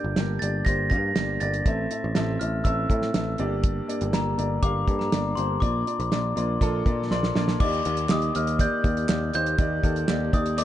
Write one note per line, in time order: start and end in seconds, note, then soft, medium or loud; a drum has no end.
0.00 0.37 G2 medium
0.00 0.11 A#3 medium
0.00 0.11 D4 medium
0.00 0.11 G4 soft
0.00 0.11 D5 medium
0.00 0.43 G6 medium
0.04 0.14 G1 medium
0.16 0.37 G1 medium
0.16 0.36 A#3 medium
0.16 0.36 D4 medium
0.16 0.37 G4 medium
0.16 0.37 A#4 medium
0.16 snare medium
0.16 closed hi-hat medium
0.39 0.62 G1 medium
0.39 0.61 A#3 medium
0.39 0.61 D4 medium
0.39 0.61 G4 medium
0.39 0.62 D5 medium
0.39 0.66 A6 medium
0.39 closed hi-hat medium
0.65 0.93 G1 medium
0.65 0.85 A#3 medium
0.65 0.86 D4 medium
0.65 0.86 G4 medium
0.65 0.86 C5 medium
0.65 0.76 A#6 loud
0.65 kick medium
0.65 closed hi-hat medium
0.90 1.12 G2 medium
0.90 1.10 A#3 medium
0.90 1.10 D4 medium
0.90 1.10 G4 medium
0.90 1.11 F5 medium
0.90 1.36 A#6 medium
0.90 kick medium
0.90 closed hi-hat medium
1.16 1.37 G1 medium
1.16 1.35 A#3 medium
1.16 1.35 D4 medium
1.16 1.35 G4 medium
1.16 1.36 D5 medium
1.16 snare medium
1.16 closed hi-hat medium
1.40 1.61 G1 medium
1.40 1.60 A#3 medium
1.40 1.60 D4 medium
1.40 1.60 G4 medium
1.40 1.60 D5 medium
1.40 2.43 A6 medium
1.40 closed hi-hat medium
1.54 closed hi-hat soft
1.66 1.86 A1 medium
1.66 2.36 A2 medium
1.66 1.85 C4 medium
1.66 1.85 E4 medium
1.66 1.85 A4 medium
1.66 1.85 E5 medium
1.66 kick medium
1.66 closed hi-hat medium
1.90 2.10 C4 medium
1.90 2.10 E4 medium
1.90 2.10 A4 medium
1.90 2.10 E5 medium
1.90 closed hi-hat medium
2.04 2.14 A1 medium
2.15 2.36 A1 medium
2.15 2.34 C4 medium
2.15 2.34 E4 medium
2.15 2.35 A4 medium
2.15 2.35 E5 medium
2.15 snare medium
2.15 closed hi-hat medium
2.40 2.61 A1 medium
2.40 2.59 C4 medium
2.40 2.59 E4 medium
2.40 2.59 A4 medium
2.40 2.60 E5 medium
2.40 2.65 F6 medium
2.40 closed hi-hat medium
2.64 2.85 A1 medium
2.64 2.84 C4 medium
2.64 2.84 E4 medium
2.64 2.85 A4 medium
2.64 2.85 E5 medium
2.64 3.35 E6 medium
2.64 kick medium
2.64 closed hi-hat medium
2.90 3.10 A2 medium
2.90 3.09 C4 medium
2.90 3.09 E4 medium
2.90 3.09 A4 medium
2.90 3.10 E5 medium
2.90 kick medium
2.90 closed hi-hat medium
3.02 snare soft
3.14 3.35 A1 medium
3.14 3.33 C4 medium
3.14 3.34 E4 medium
3.14 3.34 A4 medium
3.14 3.34 E5 medium
3.14 snare medium
3.14 closed hi-hat medium
3.38 3.80 G1 medium
3.38 4.09 G2 medium
3.38 3.78 A#3 medium
3.38 3.79 D4 medium
3.38 3.79 G4 medium
3.38 3.79 D5 medium
3.38 closed hi-hat soft
3.64 kick loud
3.64 closed hi-hat medium
3.88 4.08 A#3 medium
3.88 4.08 D4 medium
3.88 4.08 G4 medium
3.88 4.08 D5 medium
3.88 closed hi-hat medium
4.01 4.12 G1 medium
4.01 closed hi-hat soft
4.13 4.34 G1 medium
4.13 4.32 A#3 medium
4.13 4.32 D4 medium
4.13 4.33 G4 medium
4.13 4.33 D5 medium
4.13 4.65 A#5 medium
4.13 snare medium
4.13 closed hi-hat medium
4.37 4.58 G1 medium
4.37 4.57 A#3 medium
4.37 4.57 D4 medium
4.37 4.57 G4 medium
4.37 4.57 D5 medium
4.37 closed hi-hat medium
4.62 4.83 G1 loud
4.62 4.82 A#3 medium
4.62 4.82 D4 medium
4.62 4.82 G4 medium
4.62 4.83 F5 medium
4.62 5.01 D6 medium
4.62 kick medium
4.62 closed hi-hat medium
4.87 5.08 G2 medium
4.87 5.07 A#3 medium
4.87 5.07 D4 medium
4.87 5.07 G4 medium
4.87 5.07 A4 medium
4.87 kick medium
4.87 closed hi-hat medium
4.99 5.38 A#5 medium
4.99 snare soft
5.12 5.33 G1 medium
5.12 5.32 A#3 medium
5.12 5.32 D4 medium
5.12 5.32 G4 medium
5.12 5.32 D5 medium
5.12 snare medium
5.12 closed hi-hat medium
5.35 5.58 G1 medium
5.35 5.56 A#3 medium
5.35 5.56 D4 medium
5.35 5.57 G4 medium
5.35 5.57 C5 medium
5.35 5.62 C6 medium
5.35 closed hi-hat medium
5.60 5.82 A#1 medium
5.60 6.32 A#2 medium
5.60 5.81 A#3 medium
5.60 5.81 D4 medium
5.60 5.81 F4 medium
5.60 5.82 D5 loud
5.60 7.06 D6 medium
5.60 kick loud
5.60 closed hi-hat medium
5.86 6.06 A#3 medium
5.86 6.06 D4 medium
5.86 6.06 F4 medium
5.86 6.06 D5 medium
5.86 closed hi-hat medium
6.00 6.10 A#1 loud
6.00 closed hi-hat soft
6.12 6.32 A#1 medium
6.12 6.31 A#3 medium
6.12 6.31 D4 medium
6.12 6.31 F4 medium
6.12 6.31 D5 medium
6.12 snare medium
6.12 closed hi-hat medium
6.36 6.57 A#1 medium
6.36 6.55 A#3 medium
6.36 6.55 D4 medium
6.36 6.56 F4 medium
6.36 6.56 D5 medium
6.36 closed hi-hat medium
6.61 6.81 A#1 medium
6.61 6.80 A#3 medium
6.61 6.80 D4 medium
6.61 6.80 F4 medium
6.61 6.81 A4 loud
6.61 kick medium
6.61 closed hi-hat medium
6.86 7.13 A#2 medium
6.86 7.05 A#3 medium
6.86 7.05 D4 medium
6.86 7.05 F4 medium
6.86 7.06 D5 medium
6.86 kick medium
6.86 closed hi-hat soft
7.11 7.31 A#1 medium
7.11 7.30 A#3 medium
7.11 7.30 D4 medium
7.11 7.30 F4 medium
7.11 7.31 D5 medium
7.11 7.57 C6 medium
7.11 snare soft
7.23 snare medium
7.35 7.56 A#1 medium
7.35 7.55 A#3 medium
7.35 7.55 D4 medium
7.35 7.55 F4 medium
7.35 7.55 D5 medium
7.35 snare medium
7.48 snare medium
7.60 7.81 D#2 medium
7.60 8.31 D#3 medium
7.60 7.79 A#3 medium
7.60 7.80 D#4 medium
7.60 7.80 G4 medium
7.60 7.80 D5 loud
7.60 8.11 D6 medium
7.60 kick loud
7.60 crash medium
7.73 closed hi-hat soft
7.85 8.06 D#2 medium
7.85 8.05 A#3 medium
7.85 8.05 D#4 medium
7.85 8.05 G4 medium
7.85 8.05 D5 medium
7.85 closed hi-hat medium
7.97 closed hi-hat soft
8.09 8.31 D#2 medium
8.09 8.29 A#3 medium
8.09 8.29 D#4 medium
8.09 8.29 G4 medium
8.09 8.30 D#5 medium
8.09 8.36 D#6 medium
8.09 snare medium
8.09 clap medium
8.22 closed hi-hat soft
8.34 8.66 D#2 medium
8.34 8.54 A#3 medium
8.34 8.54 D#4 medium
8.34 8.54 G4 medium
8.34 8.54 D#5 medium
8.34 8.58 F6 medium
8.34 closed hi-hat medium
8.47 closed hi-hat soft
8.59 8.78 A#3 medium
8.59 8.79 D#4 medium
8.59 8.79 G4 medium
8.59 8.79 D5 loud
8.59 9.30 G6 medium
8.59 kick medium
8.59 closed hi-hat loud
8.84 9.05 D#2 medium
8.84 9.03 A#3 medium
8.84 9.03 D#4 medium
8.84 9.04 G4 medium
8.84 9.04 D5 medium
8.84 kick medium
8.84 closed hi-hat medium
8.97 closed hi-hat soft
9.08 9.30 D#2 medium
9.08 9.28 A#3 medium
9.08 9.28 D#4 medium
9.08 9.28 G4 medium
9.08 9.29 D5 medium
9.08 snare medium
9.08 clap medium
9.34 9.55 D#2 medium
9.34 9.53 A#3 medium
9.34 9.53 D#4 medium
9.34 9.54 G4 medium
9.34 9.54 C5 medium
9.34 10.30 G6 loud
9.34 closed hi-hat medium
9.46 closed hi-hat soft
9.58 9.79 D#2 loud
9.58 10.29 D#3 medium
9.58 9.78 A#3 medium
9.58 9.78 D#4 medium
9.58 9.78 G4 medium
9.58 9.78 D5 loud
9.58 kick loud
9.58 closed hi-hat loud
9.82 10.04 D#2 medium
9.82 10.02 A#3 medium
9.82 10.02 D#4 medium
9.82 10.03 G4 medium
9.82 10.03 A4 medium
9.82 kick medium
9.82 closed hi-hat medium
9.96 closed hi-hat soft
10.07 10.29 D#2 medium
10.07 10.27 A#3 medium
10.07 10.27 D#4 medium
10.07 10.27 G4 medium
10.07 10.28 D5 medium
10.07 snare medium
10.07 clap medium
10.33 10.64 D#2 medium
10.33 10.52 A#3 medium
10.33 10.52 D#4 medium
10.33 10.53 G4 medium
10.33 10.52 D5 medium
10.33 10.56 D#6 medium
10.33 kick medium
10.33 closed hi-hat medium
10.46 closed hi-hat medium
10.57 10.64 A#3 loud
10.57 10.64 D#4 medium
10.57 10.64 G4 medium
10.57 10.64 D5 loud
10.57 10.64 D6 medium
10.57 closed hi-hat loud